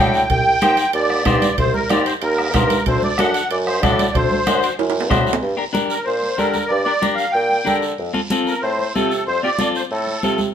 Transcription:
0.00 bassoon A2, clean electric guitar D4 F#4 A4, accordion G5
0.14 short guiro
0.30 bassoon C2, accordion G5, bombo low, high conga, high timbale, long guiro
0.61 bassoon D#2, clean electric guitar D#4 G4 C5, bombo rim, high conga, high timbale, short guiro
0.77 high timbale, short guiro
0.93 bassoon D#2, accordion D5, high timbale, long guiro
1.10 bombo rim, high conga
1.25 bassoon G2, clean electric guitar D#4 G4 C5, accordion D5, bombo low, bombo rim, high conga, high timbale, low timbale, short guiro
1.42 high conga, high timbale, short guiro
1.57 bassoon C2, accordion C5, bombo low, high conga, high timbale, long guiro
1.74 accordion A#4, high conga
1.89 bassoon D#2, clean electric guitar D#4 G4 C5, accordion D5, bombo rim, high conga, high timbale, short guiro
2.06 accordion C5, high timbale, short guiro
2.22 bassoon D#2, accordion A#4, high timbale, long guiro
2.38 bombo rim, high conga
2.54 bassoon G2, clean electric guitar D#4 G4 C5, accordion A#4, bombo low, bombo rim, high conga, high timbale, low timbale, short guiro
2.70 high conga, high timbale, short guiro
2.86 bassoon D2, accordion C5, bombo low, high conga, high timbale, long guiro
3.02 accordion D5, high conga
3.18 bassoon F#2, clean electric guitar D4 F#4 A4, accordion F#5, bombo rim, high conga, high timbale, short guiro
3.34 high timbale, short guiro
3.50 bassoon F#2, accordion D5, high timbale, long guiro
3.67 accordion C5, bombo rim, high conga
3.83 bassoon A2, clean electric guitar D4 F#4 A4, accordion D5, bombo low, bombo rim, high conga, high timbale, short guiro
3.99 high conga, high timbale, short guiro
4.14 bassoon D2, accordion C5, bombo low, high conga, high timbale, long guiro
4.31 high conga
4.47 bassoon F#2, clean electric guitar D4 F#4 C5, bombo rim, high conga, high timbale, short guiro
4.63 high timbale, short guiro
4.79 bassoon F#2, high timbale, long guiro
4.90 high timbale
4.95 high conga
5.00 low timbale
5.10 bassoon A2, clean electric guitar D4 F#4 C5, bombo low, bombo rim, high conga, low timbale, short guiro
5.27 short guiro
5.33 low timbale
5.42 bassoon G2, high conga, long guiro
5.57 clean electric guitar D4 G4 A#4
5.73 clean electric guitar D4 G4 A#4, high conga, short guiro
5.90 accordion A#4, short guiro
6.05 bassoon A#2, accordion C5, long guiro
6.23 high conga
6.37 bassoon D3, clean electric guitar D4 G4 A#4, accordion A#4, high conga, short guiro
6.54 high conga, short guiro
6.68 bassoon G2, accordion D5, high conga, long guiro
6.83 clean electric guitar D4 G4 A#4, accordion D5
7.02 clean electric guitar D4 G4 A#4, high conga, short guiro
7.15 accordion F5, short guiro
7.32 bassoon A#2, accordion G5, long guiro
7.51 high conga
7.65 bassoon D3, clean electric guitar D4 G4 A#4, high conga, short guiro
7.82 short guiro
7.98 bassoon F2, high conga, long guiro
8.13 clean electric guitar C4 F4 A4, high conga
8.30 clean electric guitar C4 F4 A4, high conga, short guiro
8.46 accordion A#4, short guiro
8.62 bassoon A2, accordion C5, long guiro
8.79 high conga
8.94 bassoon C3, clean electric guitar C4 F4 A4, accordion A4, high conga, short guiro
9.11 short guiro
9.26 bassoon F2, accordion C5, high conga, long guiro
9.43 clean electric guitar C4 F4 G4, accordion D5
9.59 clean electric guitar C4 F4 A4, high conga, short guiro
9.75 accordion C5, short guiro
9.91 bassoon A2, accordion A4, long guiro
10.07 high conga
10.23 bassoon C3, clean electric guitar C4 F4 A4, high conga, short guiro
10.38 high conga, short guiro

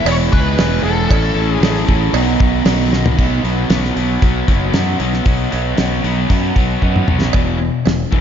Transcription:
Already playing: overdriven electric guitar E3 G#3 B3 G#4
0.05 fingered electric bass E1, distorted electric guitar E3 G#3 B3 E4, lead electric guitar C#5, open hi-hat, cowbell
0.32 fingered electric bass C#2, overdriven electric guitar E3 G#3 B3 G#4, distorted electric guitar E4, lead electric guitar B4, kick
0.57 fingered electric bass E1, overdriven electric guitar E2 B2 E3 G#3 B3, distorted electric guitar E4, snare, open hi-hat, cowbell
0.61 overdriven electric guitar G#4
0.83 fingered electric bass E1, overdriven electric guitar B3 G#4, distorted electric guitar E4, lead electric guitar A4
0.88 overdriven electric guitar E3 G#3
1.10 fingered electric bass A1, overdriven electric guitar A2 E3 A3 C#4 A4, distorted electric guitar E4, kick, open hi-hat, cowbell
1.35 fingered electric bass A1, overdriven electric guitar C#4 A4, distorted electric guitar E4
1.39 overdriven electric guitar A3
1.50 lead electric guitar G#4
1.61 fingered electric bass A1, overdriven electric guitar E3 A3 C#4 A4, distorted electric guitar E4, snare, open hi-hat, cowbell
1.76 snare
1.87 fingered electric bass A1, distorted electric guitar A2 E3 A3 C#4 E4, kick
2.13 fingered electric bass B1, overdriven electric guitar B2 F#3 B3 D#4 F#4, distorted electric guitar D#3, open hi-hat, cowbell
2.40 fingered electric bass B1, distorted electric guitar F#3, overdriven electric guitar B3 D#4 F#4, kick
2.65 fingered electric bass B1, overdriven electric guitar B2 F#3 B3 D#4 F#4, distorted electric guitar D#3, snare, open hi-hat, cowbell
2.92 distorted electric guitar F#3, overdriven electric guitar B3 D#4 F#4, snare
3.06 floor tom
3.17 fingered electric bass B1, overdriven electric guitar B2 F#3 B3 D#4 F#4, kick, crash
3.42 fingered electric bass B1, overdriven electric guitar B2 F#3 B3 D#4 F#4, open hi-hat
3.69 fingered electric bass B1, overdriven electric guitar B2 F#3 B3 D#4 F#4, snare, open hi-hat
3.84 snare
3.94 fingered electric bass B1, overdriven electric guitar B2 F#3 B3 D#4 F#4, open hi-hat
4.21 fingered electric bass B1, overdriven electric guitar B2 F#3 B3 D#4 F#4, kick, open hi-hat
4.47 fingered electric bass F#1, overdriven electric guitar B2 F#3 B3 D#4 F#4, kick, open hi-hat
4.73 fingered electric bass F#2, overdriven electric guitar B2 F#3 B3 D#4 F#4, snare, open hi-hat
4.98 fingered electric bass B1, overdriven electric guitar B2 F#3 B3 D#4 F#4, open hi-hat
5.14 snare
5.24 fingered electric bass B1, overdriven electric guitar B2 F#3 B3 D#4 F#4, kick, open hi-hat
5.51 fingered electric bass B1, overdriven electric guitar B2 F#3 B3 D#4 F#4, open hi-hat
5.77 fingered electric bass B1, overdriven electric guitar B2 F#3 B3 D#4 F#4, snare, open hi-hat
6.02 fingered electric bass B1, overdriven electric guitar B2 F#3 B3 D#4 F#4, open hi-hat
6.30 fingered electric bass F#2, overdriven electric guitar B2 F#3 B3 D#4 F#4, kick, open hi-hat
6.54 fingered electric bass B1, overdriven electric guitar B2 F#3 B3 D#4 F#4, kick, open hi-hat
6.82 fingered electric bass F#2, overdriven electric guitar B2 F#3 B3 D#4 F#4, kick
6.96 mid tom
7.07 fingered electric bass B1, overdriven electric guitar B2 F#3 B3 D#4 F#4, mid tom
7.22 snare
7.33 fingered electric bass E1, overdriven electric guitar E2 B2 E3, kick, open hi-hat, cowbell
7.59 overdriven electric guitar E2 B2
7.85 fingered electric bass E1, overdriven electric guitar E2 B2, snare, open hi-hat, cowbell
8.12 fingered electric bass E1, overdriven electric guitar E2 B2 E3, kick

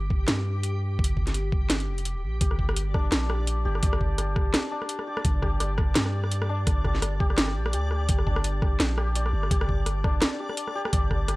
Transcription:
Already playing: 808-style bass G1, synth texture G4
0.10 kick
0.28 808-style bass G2, snare, closed hi-hat
0.63 closed hi-hat
0.99 808-style bass G1, kick
1.04 closed hi-hat
1.17 kick
1.27 snare, closed hi-hat
1.34 closed hi-hat
1.52 kick
1.70 snare, closed hi-hat
1.80 closed hi-hat
1.88 808-style bass F1
1.98 closed hi-hat
2.05 closed hi-hat
2.15 808-style bass D1
2.23 808-style bass A#1
2.41 808-style bass G1, santur G4, synth texture D5, kick, closed hi-hat
2.51 cross-stick
2.59 kick
2.69 cross-stick
2.76 closed hi-hat
2.94 santur D4, kick, cross-stick
3.12 808-style bass A#1, cross-stick, snare, closed hi-hat
3.30 santur G4, cross-stick
3.47 closed hi-hat
3.65 808-style bass G1, santur G4
3.75 cross-stick
3.83 808-style bass G1, santur D5, kick, closed hi-hat
3.93 cross-stick
4.01 kick
4.18 santur G4, cross-stick, closed hi-hat
4.36 kick, cross-stick
4.54 cross-stick, snare, closed hi-hat
4.71 santur D4
4.82 cross-stick
4.89 closed hi-hat
4.99 cross-stick
5.07 santur G4
5.17 cross-stick
5.25 808-style bass G1, kick, closed hi-hat
5.42 santur G4, kick, cross-stick
5.60 santur D5, cross-stick, closed hi-hat
5.78 kick, cross-stick
5.95 808-style bass G2, santur G4, snare, closed hi-hat
6.06 cross-stick
6.24 cross-stick
6.32 closed hi-hat
6.42 cross-stick
6.49 santur D4
6.67 808-style bass G1, kick, cross-stick, closed hi-hat
6.84 santur G4, kick, cross-stick
6.95 snare
7.02 cross-stick, closed hi-hat
7.20 santur G4, kick
7.30 cross-stick
7.38 santur D5, snare, closed hi-hat
7.48 cross-stick
7.56 808-style bass A#1
7.66 cross-stick
7.73 808-style bass D2, santur G4, closed hi-hat
7.91 santur G4, cross-stick
8.09 808-style bass G1, kick, closed hi-hat
8.19 cross-stick
8.27 santur D4, kick
8.36 cross-stick
8.44 closed hi-hat
8.62 santur G4, kick, cross-stick
8.80 808-style bass A#1, cross-stick, snare, closed hi-hat
8.98 santur G4, cross-stick
9.15 santur D5, closed hi-hat
9.26 cross-stick
9.33 808-style bass G1
9.43 cross-stick
9.51 808-style bass G1, santur G4, kick, closed hi-hat
9.61 cross-stick
9.69 kick
9.86 cross-stick, closed hi-hat
10.04 santur D4, kick, cross-stick
10.22 cross-stick, snare, closed hi-hat
10.40 santur G4
10.49 cross-stick
10.57 closed hi-hat
10.68 cross-stick
10.75 santur G4
10.85 cross-stick
10.93 808-style bass G1, santur D5, kick, closed hi-hat
11.11 kick, cross-stick
11.28 santur G4, cross-stick, closed hi-hat

